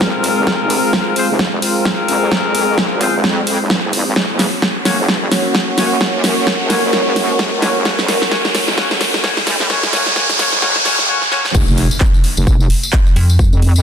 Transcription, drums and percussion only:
0.01 kick loud
0.01 snare medium
0.24 open hi-hat loud
0.47 kick loud
0.47 snare medium
0.70 open hi-hat loud
0.93 kick loud
0.93 snare medium
1.16 open hi-hat loud
1.39 kick loud
1.39 snare medium
1.62 open hi-hat loud
1.85 kick loud
1.85 snare medium
2.08 open hi-hat loud
2.32 kick loud
2.32 snare medium
2.55 open hi-hat loud
2.78 kick loud
2.78 snare medium
3.01 kick medium
3.01 open hi-hat loud
3.24 kick loud
3.24 snare medium
3.47 open hi-hat loud
3.70 kick loud
3.70 snare medium
3.93 open hi-hat loud
4.16 kick loud
4.16 snare medium
4.39 snare medium
4.39 open hi-hat loud
4.62 kick loud
4.62 snare medium
4.85 snare medium
4.85 open hi-hat loud
5.08 kick loud
5.08 snare medium
5.32 snare medium
5.32 open hi-hat loud
5.55 kick loud
5.55 snare medium
5.78 snare medium
5.78 open hi-hat loud
6.01 kick loud
6.01 snare medium
6.24 snare medium
6.24 open hi-hat loud
6.47 kick loud
6.47 snare medium
6.70 kick medium
6.70 snare medium
6.70 open hi-hat loud
6.93 kick loud
6.93 snare medium
7.16 snare medium
7.16 open hi-hat loud
7.39 kick loud
7.39 snare medium
7.62 snare medium
7.62 open hi-hat loud
7.85 kick loud
7.85 snare medium
7.99 snare medium
8.08 snare medium
8.08 open hi-hat loud
8.22 snare medium
8.31 kick loud
8.31 snare medium
8.45 snare medium
8.55 snare loud
8.55 open hi-hat loud
8.68 snare medium
8.78 kick loud
8.78 snare loud
8.91 snare medium
9.01 snare loud
9.01 open hi-hat loud
9.14 snare loud
9.24 kick loud
9.24 snare loud
9.37 snare medium
9.47 snare loud
9.47 open hi-hat loud
9.60 snare medium
9.70 kick loud
9.70 snare loud
9.83 snare medium
9.93 snare loud
9.93 open hi-hat loud
10.06 snare medium
10.16 kick loud
10.16 snare loud
10.29 snare medium
10.29 open hi-hat medium
10.39 kick medium
10.39 snare loud
10.39 open hi-hat loud
10.53 snare medium
10.62 kick loud
10.62 snare loud
10.76 snare medium
10.85 snare loud
10.85 open hi-hat loud
10.99 snare loud
11.22 snare medium
11.32 snare medium
11.45 snare medium
11.55 kick loud
11.55 crash loud
11.55 tambourine medium
11.68 tambourine soft
11.78 open hi-hat loud
11.91 tambourine medium
12.00 kick loud
12.00 clap loud
12.00 tambourine medium
12.14 tambourine soft
12.24 open hi-hat loud
12.37 tambourine medium
12.47 kick loud
12.47 tambourine medium
12.60 tambourine soft
12.70 open hi-hat loud
12.83 tambourine medium
12.93 kick loud
12.93 clap loud
13.07 tambourine soft
13.16 open hi-hat loud
13.30 tambourine medium
13.39 kick loud
13.39 tambourine medium
13.53 tambourine soft
13.62 open hi-hat loud
13.76 tambourine medium

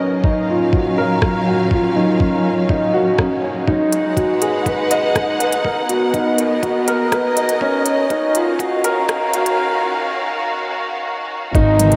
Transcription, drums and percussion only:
0.24 kick loud
0.73 kick medium
1.22 kick loud
1.22 cross-stick medium
1.71 kick medium
2.20 kick loud
2.69 kick loud
3.18 kick loud
3.18 cross-stick medium
3.68 kick loud
3.92 closed hi-hat medium
4.17 kick loud
4.17 closed hi-hat soft
4.42 closed hi-hat medium
4.66 kick medium
4.66 closed hi-hat soft
4.91 closed hi-hat medium
5.15 kick loud
5.15 cross-stick medium
5.15 closed hi-hat soft
5.40 closed hi-hat medium
5.52 closed hi-hat soft
5.65 kick medium
5.89 closed hi-hat medium
6.14 kick loud
6.14 closed hi-hat soft
6.38 closed hi-hat medium
6.63 kick medium
6.63 closed hi-hat soft
6.88 closed hi-hat medium
7.12 kick loud
7.12 cross-stick medium
7.12 closed hi-hat soft
7.37 closed hi-hat medium
7.49 closed hi-hat soft
7.61 kick medium
7.86 closed hi-hat medium
8.10 kick medium
8.10 closed hi-hat soft
8.35 closed hi-hat medium
8.59 kick medium
8.59 closed hi-hat soft
8.84 closed hi-hat medium
9.09 kick loud
9.09 cross-stick medium
9.09 closed hi-hat soft
9.33 closed hi-hat medium
9.46 closed hi-hat soft
11.55 kick loud
11.55 closed hi-hat soft
11.79 closed hi-hat medium
11.79 mid tom medium
11.92 closed hi-hat soft

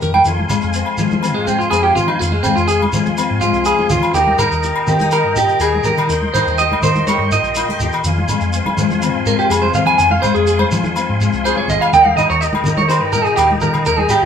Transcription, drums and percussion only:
0.02 low conga medium
0.02 shekere medium
0.14 high conga medium
0.14 low agogo medium
0.25 low conga medium
0.25 shekere medium
0.39 high conga medium
0.49 low conga medium
0.49 low agogo medium
0.49 shekere loud
0.62 shekere soft
0.74 shekere medium
0.86 low agogo medium
0.98 low conga medium
0.98 shekere medium
1.11 high conga medium
1.11 shekere soft
1.23 low agogo medium
1.23 shekere medium
1.47 shekere medium
1.60 shekere soft
1.71 low agogo medium
1.71 shekere medium
1.96 low conga medium
1.96 shekere medium
2.08 low agogo medium
2.20 low conga medium
2.20 shekere medium
2.32 high conga medium
2.44 low conga medium
2.44 low agogo medium
2.44 shekere loud
2.57 shekere soft
2.68 shekere medium
2.82 high conga medium
2.82 low agogo medium
2.93 low conga medium
2.93 shekere loud
3.06 high conga medium
3.06 shekere soft
3.17 low agogo medium
3.17 shekere medium
3.41 shekere medium
3.54 shekere soft
3.65 low agogo medium
3.65 shekere medium
3.79 high conga medium
3.90 low conga medium
3.90 shekere loud
4.03 low agogo medium
4.03 shekere soft
4.15 low conga medium
4.15 shekere medium
4.27 high conga medium
4.39 low conga medium
4.39 low agogo medium
4.39 shekere loud
4.52 shekere soft
4.63 shekere medium
4.76 low agogo medium
4.87 low conga medium
4.87 shekere medium
4.99 high conga medium
4.99 shekere soft
5.11 low agogo medium
5.11 shekere medium
5.36 shekere loud
5.48 shekere soft
5.60 low agogo medium
5.60 shekere medium
5.74 high conga medium
5.84 low conga medium
5.84 shekere medium
5.97 low agogo medium
5.97 shekere soft
6.10 low conga medium
6.10 shekere medium
6.22 high conga medium
6.35 low conga medium
6.35 low agogo medium
6.35 shekere loud
6.47 shekere soft
6.58 shekere medium
6.72 high conga medium
6.72 low agogo medium
6.83 low conga medium
6.83 shekere loud
6.95 high conga medium
6.95 shekere soft
7.07 high conga medium
7.07 low agogo medium
7.07 shekere medium
7.32 shekere loud
7.44 shekere soft
7.55 low agogo medium
7.55 shekere medium
7.69 high conga medium
7.80 low conga medium
7.80 shekere loud
7.92 low agogo medium
7.92 shekere soft
8.04 low conga medium
8.04 shekere loud
8.18 high conga medium
8.28 low conga medium
8.28 low agogo medium
8.28 shekere loud
8.41 shekere soft
8.53 shekere medium
8.66 high conga medium
8.66 low agogo medium
8.78 low conga medium
8.78 shekere loud
8.91 high conga medium
8.91 shekere soft
9.02 low agogo medium
9.02 shekere medium
9.26 shekere loud
9.39 shekere soft
9.51 low agogo medium
9.51 shekere medium
9.63 high conga medium
9.74 low conga medium
9.74 shekere medium
9.87 low agogo medium
9.87 shekere soft
9.99 low conga medium
9.99 shekere medium
10.10 high conga medium
10.22 low conga medium
10.22 low agogo medium
10.22 shekere loud
10.35 shekere soft
10.47 shekere medium
10.59 high conga medium
10.59 low agogo medium
10.71 low conga medium
10.71 shekere medium
10.83 high conga medium
10.83 shekere soft
10.96 low agogo medium
10.96 shekere medium
11.21 shekere medium
11.33 shekere soft
11.45 low agogo medium
11.45 shekere medium
11.57 high conga medium
11.68 low conga medium
11.68 shekere medium
11.82 low agogo medium
11.82 shekere soft
11.93 low conga medium
11.93 shekere medium
12.05 high conga medium
12.16 low conga medium
12.16 low agogo medium
12.16 shekere medium
12.30 shekere soft
12.42 shekere medium
12.53 high conga medium
12.53 low agogo medium
12.64 low conga medium
12.64 shekere medium
12.77 high conga medium
12.77 shekere soft
12.90 low agogo medium
12.90 shekere medium
13.13 shekere medium
13.25 shekere soft
13.37 low agogo medium
13.37 shekere medium
13.51 high conga medium
13.61 low conga medium
13.61 shekere medium
13.74 low agogo medium
13.74 shekere soft
13.85 low conga medium
13.85 shekere medium
13.97 high conga medium
14.09 low agogo medium
14.09 shekere loud

